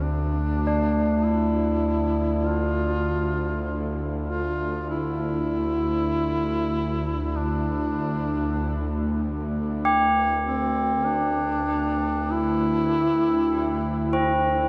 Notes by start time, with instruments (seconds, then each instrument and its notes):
Already playing: synth drone D2, tubular bells E4
0.03 duduk D4
0.67 tubular bells D4
1.24 duduk E4
2.46 duduk F4
4.28 duduk F4
4.90 duduk E4
7.36 duduk D4
9.85 tubular bells G4
10.45 duduk C4
11.06 duduk D4
12.31 duduk E4
14.13 tubular bells C4